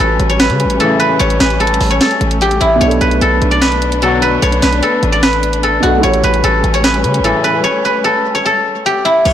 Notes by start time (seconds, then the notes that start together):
Already playing: G3 A3 C#4 E4 F#4 G4 B4 C#5
0.00 A1 A4
0.20 A1, closed hi-hat
0.29 C#5, closed hi-hat
0.40 B4, snare, closed hi-hat
0.50 C#3, closed hi-hat
0.60 closed hi-hat
0.65 A1
0.70 closed hi-hat
0.80 A2 C#3 E3 A4, closed hi-hat
1.00 B4, closed hi-hat
1.19 A1 C#5, closed hi-hat
1.30 closed hi-hat
1.40 A1 B4, snare, closed hi-hat
1.50 closed hi-hat
1.60 A4, closed hi-hat
1.67 closed hi-hat
1.74 closed hi-hat
1.81 A1, open hi-hat
1.90 C#5, closed hi-hat
2.01 A4, snare, closed hi-hat
2.11 closed hi-hat
2.21 A1, closed hi-hat
2.31 closed hi-hat
2.41 G4, closed hi-hat
2.51 closed hi-hat
2.61 A1 E4, closed hi-hat
2.75 B2 B3
2.81 B1 B3 D4 C#5, closed hi-hat
2.87 A4
2.91 closed hi-hat
3.01 B1 B4, closed hi-hat
3.11 closed hi-hat
3.21 B1 A4, closed hi-hat
3.42 B1, closed hi-hat
3.51 D5, closed hi-hat
3.61 B4, snare, closed hi-hat
3.72 closed hi-hat
3.82 closed hi-hat
3.92 closed hi-hat
4.02 B2 D3 F#3 A4, closed hi-hat
4.22 B4, closed hi-hat
4.42 B1 C#5, closed hi-hat
4.52 closed hi-hat
4.62 B1 B4, snare, closed hi-hat
4.73 closed hi-hat
4.83 A4, closed hi-hat
5.03 A1, closed hi-hat
5.12 D5, closed hi-hat
5.23 B4, snare, closed hi-hat
5.33 closed hi-hat
5.43 closed hi-hat
5.53 closed hi-hat
5.63 A4, closed hi-hat
5.80 B1 B2 B3 D4 F#4, closed hi-hat
5.86 A4
5.97 A3 E4
6.03 A1 G3 A3 C#4 G4 C#5, closed hi-hat
6.09 C#5
6.14 closed hi-hat
6.24 A1 B4, closed hi-hat
6.34 closed hi-hat
6.44 A1 A4, closed hi-hat
6.64 A1, closed hi-hat
6.74 C#5, closed hi-hat
6.84 B4, snare, closed hi-hat
6.94 closed hi-hat
7.04 C#3, closed hi-hat
7.14 closed hi-hat
7.19 A1
7.24 A2 C#3 E3 A4, closed hi-hat
7.44 B4, closed hi-hat
7.64 C#5
7.85 B4
8.04 A4
8.35 C#5
8.46 A4
8.86 G4
9.05 E4
9.25 B1 C#5, closed hi-hat, crash